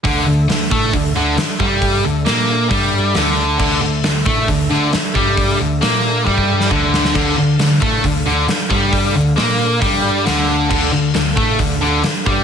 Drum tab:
CC |----------------|----------------|x---------------|----------------|
HH |o---o---o---o---|o---o---o---o---|----o---o---o---|o---o-----------|
SD |----o-------o---|----o-------o---|----o-------o---|----o------o--oo|
BD |o-----o-o-----o-|o-------o-------|o-----o-o-----o-|o-------oo--o---|

CC |x---------------|----------------|x---------------|
HH |----o---o---o---|o---o---o---o---|----o---o---o---|
SD |----o-------o---|----o-------o---|----o-------o---|
BD |o-----o-o-----o-|o-------o-------|o-----o-o-----o-|